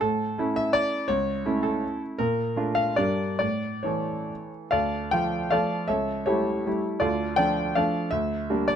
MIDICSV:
0, 0, Header, 1, 2, 480
1, 0, Start_track
1, 0, Key_signature, -1, "minor"
1, 0, Tempo, 357356
1, 23, Time_signature, 3, 2, 24, 8
1, 1945, Tempo, 374298
1, 3385, Tempo, 425532
1, 6265, Tempo, 385852
1, 8185, Tempo, 368324
1, 10907, End_track
2, 0, Start_track
2, 0, Title_t, "Grand piano"
2, 0, Program_c, 0, 0
2, 10, Note_on_c, 0, 69, 83
2, 23, Note_on_c, 0, 45, 58
2, 281, Control_c, 0, 64, 127
2, 494, Note_off_c, 0, 45, 0
2, 513, Note_on_c, 0, 57, 51
2, 518, Note_on_c, 0, 61, 53
2, 527, Note_on_c, 0, 64, 57
2, 752, Note_off_c, 0, 69, 0
2, 755, Note_on_c, 0, 76, 96
2, 982, Note_on_c, 0, 74, 97
2, 995, Note_off_c, 0, 76, 0
2, 1007, Control_c, 0, 64, 0
2, 1408, Note_off_c, 0, 57, 0
2, 1410, Note_off_c, 0, 61, 0
2, 1415, Note_off_c, 0, 64, 0
2, 1449, Note_on_c, 0, 73, 94
2, 1452, Note_off_c, 0, 74, 0
2, 1467, Note_on_c, 0, 37, 58
2, 1705, Control_c, 0, 64, 127
2, 1934, Note_off_c, 0, 37, 0
2, 1953, Note_on_c, 0, 57, 53
2, 1955, Note_on_c, 0, 61, 53
2, 1963, Note_on_c, 0, 64, 60
2, 2178, Note_on_c, 0, 69, 75
2, 2186, Note_off_c, 0, 73, 0
2, 2443, Control_c, 0, 64, 0
2, 2665, Note_off_c, 0, 69, 0
2, 2857, Note_off_c, 0, 57, 0
2, 2858, Note_off_c, 0, 61, 0
2, 2862, Note_off_c, 0, 64, 0
2, 2890, Note_on_c, 0, 70, 85
2, 2902, Note_on_c, 0, 46, 56
2, 3133, Control_c, 0, 64, 127
2, 3369, Note_off_c, 0, 46, 0
2, 3374, Note_on_c, 0, 57, 51
2, 3383, Note_on_c, 0, 62, 51
2, 3385, Note_on_c, 0, 65, 52
2, 3586, Note_on_c, 0, 77, 85
2, 3607, Note_off_c, 0, 70, 0
2, 3798, Note_off_c, 0, 57, 0
2, 3802, Note_off_c, 0, 62, 0
2, 3803, Note_off_c, 0, 65, 0
2, 3828, Note_on_c, 0, 74, 83
2, 3834, Note_off_c, 0, 77, 0
2, 3844, Note_on_c, 0, 55, 41
2, 3847, Note_on_c, 0, 43, 55
2, 3851, Note_on_c, 0, 62, 40
2, 3857, Note_on_c, 0, 70, 43
2, 3858, Control_c, 0, 64, 0
2, 4096, Control_c, 0, 64, 127
2, 4285, Note_off_c, 0, 55, 0
2, 4288, Note_off_c, 0, 62, 0
2, 4291, Note_off_c, 0, 70, 0
2, 4291, Note_off_c, 0, 74, 0
2, 4307, Note_on_c, 0, 74, 81
2, 4317, Note_off_c, 0, 43, 0
2, 4320, Note_on_c, 0, 45, 50
2, 4342, Control_c, 0, 64, 0
2, 4542, Control_c, 0, 64, 127
2, 4803, Note_on_c, 0, 73, 63
2, 4805, Note_off_c, 0, 45, 0
2, 4814, Note_off_c, 0, 74, 0
2, 4818, Note_on_c, 0, 52, 45
2, 4831, Note_on_c, 0, 57, 46
2, 4836, Note_on_c, 0, 69, 49
2, 5349, Control_c, 0, 64, 0
2, 5566, Note_off_c, 0, 73, 0
2, 5763, Note_off_c, 0, 52, 0
2, 5770, Note_off_c, 0, 57, 0
2, 5772, Note_off_c, 0, 69, 0
2, 5795, Note_on_c, 0, 77, 82
2, 5808, Note_on_c, 0, 74, 63
2, 5811, Note_on_c, 0, 69, 62
2, 5814, Note_on_c, 0, 38, 52
2, 6019, Control_c, 0, 64, 127
2, 6231, Note_off_c, 0, 74, 0
2, 6232, Note_off_c, 0, 69, 0
2, 6252, Note_off_c, 0, 38, 0
2, 6253, Note_on_c, 0, 79, 91
2, 6256, Note_off_c, 0, 77, 0
2, 6268, Note_on_c, 0, 57, 47
2, 6270, Note_on_c, 0, 53, 47
2, 6280, Note_on_c, 0, 65, 49
2, 6705, Note_off_c, 0, 57, 0
2, 6706, Note_off_c, 0, 53, 0
2, 6712, Note_off_c, 0, 65, 0
2, 6739, Note_on_c, 0, 77, 84
2, 6746, Note_off_c, 0, 79, 0
2, 6754, Note_on_c, 0, 74, 66
2, 6760, Note_on_c, 0, 69, 65
2, 6763, Note_on_c, 0, 53, 43
2, 6763, Note_on_c, 0, 57, 41
2, 6768, Control_c, 0, 64, 0
2, 6771, Note_on_c, 0, 65, 45
2, 7176, Note_off_c, 0, 57, 0
2, 7177, Note_off_c, 0, 53, 0
2, 7181, Note_off_c, 0, 65, 0
2, 7185, Note_off_c, 0, 74, 0
2, 7189, Note_off_c, 0, 69, 0
2, 7200, Note_on_c, 0, 76, 80
2, 7210, Note_off_c, 0, 77, 0
2, 7213, Note_on_c, 0, 69, 64
2, 7217, Note_on_c, 0, 73, 60
2, 7220, Note_on_c, 0, 37, 51
2, 7426, Control_c, 0, 64, 127
2, 7657, Note_off_c, 0, 73, 0
2, 7666, Note_off_c, 0, 69, 0
2, 7675, Note_on_c, 0, 73, 77
2, 7686, Note_on_c, 0, 67, 54
2, 7687, Note_on_c, 0, 69, 55
2, 7689, Note_off_c, 0, 37, 0
2, 7693, Note_on_c, 0, 55, 47
2, 7694, Note_off_c, 0, 76, 0
2, 7697, Note_on_c, 0, 57, 47
2, 7706, Note_on_c, 0, 64, 51
2, 8131, Note_off_c, 0, 55, 0
2, 8133, Note_off_c, 0, 57, 0
2, 8138, Note_off_c, 0, 64, 0
2, 8182, Note_on_c, 0, 55, 44
2, 8183, Note_on_c, 0, 57, 43
2, 8192, Note_on_c, 0, 64, 48
2, 8202, Control_c, 0, 64, 0
2, 8361, Note_off_c, 0, 67, 0
2, 8362, Note_off_c, 0, 69, 0
2, 8408, Note_off_c, 0, 73, 0
2, 8604, Note_off_c, 0, 55, 0
2, 8604, Note_off_c, 0, 57, 0
2, 8609, Note_off_c, 0, 64, 0
2, 8615, Note_on_c, 0, 74, 76
2, 8627, Note_on_c, 0, 69, 58
2, 8629, Note_on_c, 0, 65, 63
2, 8632, Note_on_c, 0, 38, 55
2, 8912, Control_c, 0, 64, 127
2, 9076, Note_off_c, 0, 69, 0
2, 9077, Note_off_c, 0, 65, 0
2, 9089, Note_off_c, 0, 74, 0
2, 9091, Note_on_c, 0, 79, 99
2, 9098, Note_off_c, 0, 38, 0
2, 9109, Note_on_c, 0, 74, 68
2, 9112, Note_on_c, 0, 53, 50
2, 9119, Note_on_c, 0, 57, 48
2, 9121, Note_on_c, 0, 62, 55
2, 9560, Note_off_c, 0, 53, 0
2, 9564, Note_off_c, 0, 57, 0
2, 9565, Note_off_c, 0, 62, 0
2, 9573, Note_off_c, 0, 74, 0
2, 9600, Note_off_c, 0, 79, 0
2, 9601, Note_on_c, 0, 77, 77
2, 9612, Note_on_c, 0, 74, 58
2, 9617, Note_on_c, 0, 69, 56
2, 9619, Note_on_c, 0, 53, 46
2, 9622, Note_on_c, 0, 57, 44
2, 9630, Note_on_c, 0, 62, 50
2, 9634, Control_c, 0, 64, 0
2, 10035, Note_off_c, 0, 53, 0
2, 10037, Note_off_c, 0, 57, 0
2, 10041, Note_off_c, 0, 62, 0
2, 10045, Note_off_c, 0, 74, 0
2, 10048, Note_off_c, 0, 69, 0
2, 10060, Note_on_c, 0, 76, 86
2, 10072, Note_off_c, 0, 77, 0
2, 10077, Note_on_c, 0, 38, 60
2, 10314, Control_c, 0, 64, 127
2, 10551, Note_off_c, 0, 38, 0
2, 10572, Note_on_c, 0, 55, 52
2, 10576, Note_on_c, 0, 58, 54
2, 10581, Note_on_c, 0, 62, 57
2, 10803, Note_on_c, 0, 74, 86
2, 10812, Note_off_c, 0, 76, 0
2, 10907, Note_off_c, 0, 55, 0
2, 10907, Note_off_c, 0, 58, 0
2, 10907, Note_off_c, 0, 62, 0
2, 10907, Note_off_c, 0, 74, 0
2, 10907, End_track
0, 0, End_of_file